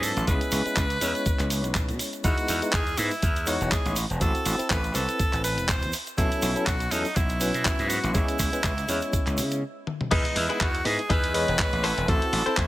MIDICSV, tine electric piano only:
0, 0, Header, 1, 2, 480
1, 0, Start_track
1, 0, Key_signature, 4, "major"
1, 0, Tempo, 491803
1, 270, Time_signature, 4, 2, 24, 8
1, 12367, End_track
2, 0, Start_track
2, 0, Title_t, "Tine electric piano"
2, 0, Program_c, 0, 4
2, 0, Note_on_c, 0, 54, 90
2, 0, Note_on_c, 0, 59, 82
2, 0, Note_on_c, 0, 61, 85
2, 0, Note_on_c, 0, 64, 83
2, 0, Note_on_c, 0, 71, 102
2, 241, Note_off_c, 0, 54, 0
2, 244, Note_off_c, 0, 59, 0
2, 247, Note_off_c, 0, 61, 0
2, 248, Note_off_c, 0, 64, 0
2, 251, Note_off_c, 0, 71, 0
2, 268, Note_on_c, 0, 56, 83
2, 270, Note_on_c, 0, 59, 78
2, 272, Note_on_c, 0, 61, 80
2, 275, Note_on_c, 0, 64, 79
2, 275, Note_on_c, 0, 68, 97
2, 611, Note_off_c, 0, 56, 0
2, 612, Note_off_c, 0, 59, 0
2, 613, Note_off_c, 0, 61, 0
2, 614, Note_off_c, 0, 64, 0
2, 615, Note_off_c, 0, 68, 0
2, 641, Note_on_c, 0, 56, 77
2, 645, Note_on_c, 0, 59, 70
2, 647, Note_on_c, 0, 61, 70
2, 648, Note_on_c, 0, 64, 72
2, 651, Note_on_c, 0, 71, 85
2, 829, Note_off_c, 0, 56, 0
2, 831, Note_off_c, 0, 59, 0
2, 832, Note_off_c, 0, 61, 0
2, 833, Note_off_c, 0, 64, 0
2, 834, Note_off_c, 0, 71, 0
2, 982, Note_on_c, 0, 56, 77
2, 987, Note_on_c, 0, 59, 74
2, 992, Note_on_c, 0, 61, 72
2, 996, Note_on_c, 0, 64, 71
2, 1001, Note_on_c, 0, 73, 86
2, 2161, Note_off_c, 0, 56, 0
2, 2163, Note_off_c, 0, 59, 0
2, 2166, Note_off_c, 0, 61, 0
2, 2168, Note_off_c, 0, 64, 0
2, 2170, Note_off_c, 0, 73, 0
2, 2183, Note_on_c, 0, 56, 91
2, 2186, Note_on_c, 0, 59, 86
2, 2188, Note_on_c, 0, 63, 85
2, 2190, Note_on_c, 0, 64, 86
2, 2194, Note_on_c, 0, 71, 101
2, 2528, Note_off_c, 0, 56, 0
2, 2530, Note_off_c, 0, 59, 0
2, 2531, Note_off_c, 0, 63, 0
2, 2532, Note_off_c, 0, 64, 0
2, 2534, Note_off_c, 0, 71, 0
2, 2559, Note_on_c, 0, 56, 79
2, 2560, Note_on_c, 0, 59, 72
2, 2563, Note_on_c, 0, 63, 72
2, 2566, Note_on_c, 0, 64, 73
2, 2568, Note_on_c, 0, 71, 86
2, 2748, Note_off_c, 0, 56, 0
2, 2748, Note_off_c, 0, 59, 0
2, 2750, Note_off_c, 0, 63, 0
2, 2752, Note_off_c, 0, 64, 0
2, 2752, Note_off_c, 0, 71, 0
2, 2901, Note_on_c, 0, 56, 82
2, 2903, Note_on_c, 0, 59, 76
2, 2906, Note_on_c, 0, 63, 76
2, 2908, Note_on_c, 0, 64, 76
2, 2912, Note_on_c, 0, 71, 92
2, 3039, Note_off_c, 0, 56, 0
2, 3040, Note_off_c, 0, 59, 0
2, 3042, Note_off_c, 0, 63, 0
2, 3042, Note_off_c, 0, 64, 0
2, 3045, Note_off_c, 0, 71, 0
2, 3380, Note_on_c, 0, 56, 88
2, 3383, Note_on_c, 0, 59, 84
2, 3384, Note_on_c, 0, 63, 82
2, 3387, Note_on_c, 0, 64, 83
2, 3390, Note_on_c, 0, 73, 98
2, 3853, Note_off_c, 0, 56, 0
2, 3854, Note_off_c, 0, 59, 0
2, 3855, Note_off_c, 0, 63, 0
2, 3856, Note_off_c, 0, 64, 0
2, 3857, Note_off_c, 0, 73, 0
2, 4100, Note_on_c, 0, 60, 87
2, 4105, Note_on_c, 0, 64, 79
2, 4110, Note_on_c, 0, 66, 93
2, 4447, Note_off_c, 0, 60, 0
2, 4449, Note_off_c, 0, 64, 0
2, 4452, Note_off_c, 0, 66, 0
2, 4473, Note_on_c, 0, 60, 79
2, 4479, Note_on_c, 0, 64, 70
2, 4484, Note_on_c, 0, 69, 85
2, 4665, Note_off_c, 0, 60, 0
2, 4668, Note_off_c, 0, 64, 0
2, 4670, Note_off_c, 0, 69, 0
2, 4813, Note_on_c, 0, 60, 80
2, 4824, Note_on_c, 0, 64, 73
2, 4833, Note_on_c, 0, 71, 90
2, 5769, Note_off_c, 0, 60, 0
2, 5775, Note_off_c, 0, 64, 0
2, 5779, Note_off_c, 0, 71, 0
2, 6024, Note_on_c, 0, 54, 93
2, 6026, Note_on_c, 0, 59, 86
2, 6028, Note_on_c, 0, 61, 86
2, 6030, Note_on_c, 0, 64, 88
2, 6034, Note_on_c, 0, 69, 107
2, 6369, Note_off_c, 0, 54, 0
2, 6370, Note_off_c, 0, 59, 0
2, 6371, Note_off_c, 0, 61, 0
2, 6372, Note_off_c, 0, 64, 0
2, 6374, Note_off_c, 0, 69, 0
2, 6395, Note_on_c, 0, 54, 78
2, 6398, Note_on_c, 0, 59, 74
2, 6400, Note_on_c, 0, 61, 74
2, 6404, Note_on_c, 0, 64, 75
2, 6405, Note_on_c, 0, 69, 88
2, 6586, Note_off_c, 0, 54, 0
2, 6588, Note_off_c, 0, 59, 0
2, 6589, Note_off_c, 0, 61, 0
2, 6590, Note_off_c, 0, 64, 0
2, 6591, Note_off_c, 0, 69, 0
2, 6746, Note_on_c, 0, 54, 83
2, 6749, Note_on_c, 0, 59, 77
2, 6751, Note_on_c, 0, 61, 76
2, 6752, Note_on_c, 0, 64, 79
2, 6755, Note_on_c, 0, 69, 96
2, 6882, Note_off_c, 0, 54, 0
2, 6883, Note_off_c, 0, 59, 0
2, 6884, Note_off_c, 0, 61, 0
2, 6885, Note_off_c, 0, 64, 0
2, 6886, Note_off_c, 0, 69, 0
2, 7220, Note_on_c, 0, 54, 94
2, 7224, Note_on_c, 0, 59, 86
2, 7228, Note_on_c, 0, 61, 86
2, 7233, Note_on_c, 0, 64, 87
2, 7238, Note_on_c, 0, 71, 101
2, 7920, Note_off_c, 0, 54, 0
2, 7922, Note_off_c, 0, 59, 0
2, 7924, Note_off_c, 0, 61, 0
2, 7926, Note_off_c, 0, 64, 0
2, 7929, Note_off_c, 0, 71, 0
2, 7943, Note_on_c, 0, 56, 89
2, 7944, Note_on_c, 0, 59, 80
2, 7948, Note_on_c, 0, 61, 81
2, 7949, Note_on_c, 0, 64, 80
2, 7952, Note_on_c, 0, 68, 95
2, 8289, Note_off_c, 0, 56, 0
2, 8289, Note_off_c, 0, 59, 0
2, 8291, Note_off_c, 0, 61, 0
2, 8291, Note_off_c, 0, 64, 0
2, 8293, Note_off_c, 0, 68, 0
2, 8320, Note_on_c, 0, 56, 77
2, 8322, Note_on_c, 0, 59, 72
2, 8324, Note_on_c, 0, 61, 75
2, 8327, Note_on_c, 0, 64, 73
2, 8330, Note_on_c, 0, 71, 88
2, 8509, Note_off_c, 0, 56, 0
2, 8509, Note_off_c, 0, 59, 0
2, 8511, Note_off_c, 0, 61, 0
2, 8512, Note_off_c, 0, 64, 0
2, 8513, Note_off_c, 0, 71, 0
2, 8661, Note_on_c, 0, 56, 83
2, 8667, Note_on_c, 0, 59, 75
2, 8671, Note_on_c, 0, 61, 75
2, 8676, Note_on_c, 0, 64, 74
2, 8681, Note_on_c, 0, 73, 89
2, 9386, Note_off_c, 0, 56, 0
2, 9389, Note_off_c, 0, 59, 0
2, 9391, Note_off_c, 0, 61, 0
2, 9393, Note_off_c, 0, 64, 0
2, 9396, Note_off_c, 0, 73, 0
2, 9867, Note_on_c, 0, 56, 93
2, 9867, Note_on_c, 0, 59, 85
2, 9871, Note_on_c, 0, 75, 87
2, 9872, Note_on_c, 0, 52, 90
2, 9875, Note_on_c, 0, 71, 107
2, 10210, Note_off_c, 0, 56, 0
2, 10211, Note_off_c, 0, 59, 0
2, 10212, Note_off_c, 0, 75, 0
2, 10213, Note_off_c, 0, 52, 0
2, 10214, Note_off_c, 0, 71, 0
2, 10238, Note_on_c, 0, 56, 80
2, 10241, Note_on_c, 0, 59, 73
2, 10244, Note_on_c, 0, 63, 71
2, 10245, Note_on_c, 0, 64, 73
2, 10248, Note_on_c, 0, 71, 88
2, 10427, Note_off_c, 0, 56, 0
2, 10429, Note_off_c, 0, 59, 0
2, 10430, Note_off_c, 0, 63, 0
2, 10431, Note_off_c, 0, 64, 0
2, 10432, Note_off_c, 0, 71, 0
2, 10585, Note_on_c, 0, 56, 84
2, 10588, Note_on_c, 0, 59, 78
2, 10590, Note_on_c, 0, 63, 79
2, 10591, Note_on_c, 0, 64, 80
2, 10594, Note_on_c, 0, 71, 93
2, 10721, Note_off_c, 0, 56, 0
2, 10723, Note_off_c, 0, 59, 0
2, 10724, Note_off_c, 0, 63, 0
2, 10724, Note_off_c, 0, 64, 0
2, 10726, Note_off_c, 0, 71, 0
2, 11064, Note_on_c, 0, 56, 96
2, 11066, Note_on_c, 0, 59, 86
2, 11068, Note_on_c, 0, 75, 88
2, 11072, Note_on_c, 0, 52, 86
2, 11075, Note_on_c, 0, 73, 102
2, 11534, Note_off_c, 0, 56, 0
2, 11536, Note_off_c, 0, 59, 0
2, 11537, Note_off_c, 0, 75, 0
2, 11538, Note_off_c, 0, 52, 0
2, 11540, Note_off_c, 0, 73, 0
2, 11784, Note_on_c, 0, 60, 88
2, 11789, Note_on_c, 0, 64, 83
2, 11795, Note_on_c, 0, 66, 99
2, 12129, Note_off_c, 0, 60, 0
2, 12131, Note_off_c, 0, 64, 0
2, 12134, Note_off_c, 0, 66, 0
2, 12159, Note_on_c, 0, 60, 81
2, 12165, Note_on_c, 0, 64, 74
2, 12170, Note_on_c, 0, 69, 89
2, 12348, Note_off_c, 0, 60, 0
2, 12351, Note_off_c, 0, 64, 0
2, 12353, Note_off_c, 0, 69, 0
2, 12367, End_track
0, 0, End_of_file